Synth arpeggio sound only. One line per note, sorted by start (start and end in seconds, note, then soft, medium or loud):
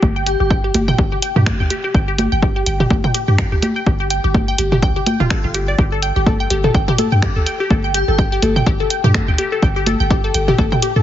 0.03 0.09 G4 loud
0.16 0.21 G5 medium
0.26 0.33 G4 loud
0.40 0.45 G4 loud
0.50 0.57 G5 medium
0.64 0.69 G4 loud
0.74 0.81 G4 loud
0.88 0.93 G5 medium
0.98 1.05 G4 loud
1.12 1.17 G4 loud
1.22 1.29 G5 medium
1.36 1.41 G4 loud
1.46 1.53 G4 loud
1.60 1.65 G5 medium
1.70 1.77 G4 loud
1.84 1.89 G4 loud
1.94 2.01 G5 medium
2.08 2.13 G4 loud
2.18 2.25 G4 loud
2.32 2.37 G5 medium
2.42 2.49 G4 loud
2.56 2.61 G4 loud
2.67 2.73 G5 medium
2.80 2.85 G4 loud
2.90 2.97 G4 loud
3.04 3.09 G5 medium
3.14 3.21 G4 loud
3.28 3.33 G4 loud
3.38 3.45 G5 medium
3.52 3.57 G4 loud
3.62 3.69 G4 loud
3.76 3.81 G5 medium
3.86 3.93 G4 loud
4.00 4.05 G4 loud
4.10 4.17 G5 medium
4.24 4.29 G4 loud
4.35 4.41 G4 loud
4.48 4.53 G5 medium
4.59 4.65 G4 loud
4.72 4.77 G4 loud
4.83 4.89 G5 medium
4.96 5.01 G4 loud
5.07 5.13 G5 medium
5.20 5.25 F4 loud
5.31 5.37 A4 medium
5.44 5.47 F4 medium
5.55 5.61 G4 medium
5.68 5.73 D5 medium
5.79 5.85 G4 loud
5.92 5.95 A4 medium
6.03 6.09 G5 medium
6.16 6.21 G4 loud
6.27 6.30 A4 medium
6.40 6.45 G5 medium
6.50 6.57 G4 loud
6.64 6.67 A4 medium
6.75 6.81 G5 medium
6.88 6.93 G4 loud
6.98 7.02 A4 medium
7.12 7.17 G5 medium
7.22 7.29 G4 loud
7.36 7.39 A4 medium
7.46 7.53 G5 medium
7.60 7.65 G4 loud
7.71 7.74 A4 medium
7.84 7.89 G5 medium
7.95 8.01 G4 loud
8.08 8.11 A4 medium
8.19 8.25 G5 medium
8.32 8.37 G4 loud
8.43 8.46 A4 medium
8.56 8.61 G5 medium
8.67 8.73 G4 loud
8.80 8.83 A4 medium
8.91 8.97 G5 medium
9.04 9.09 G4 loud
9.15 9.18 A4 medium
9.28 9.33 G5 medium
9.39 9.45 G4 loud
9.52 9.55 A4 medium
9.63 9.69 G5 medium
9.76 9.81 G4 loud
9.87 9.90 A4 medium
10.00 10.05 G5 medium
10.11 10.17 G4 loud
10.24 10.27 A4 medium
10.35 10.41 G5 medium
10.48 10.53 G4 loud
10.59 10.62 A4 medium
10.72 10.77 G5 medium
10.82 10.89 G4 loud
10.96 10.99 A4 medium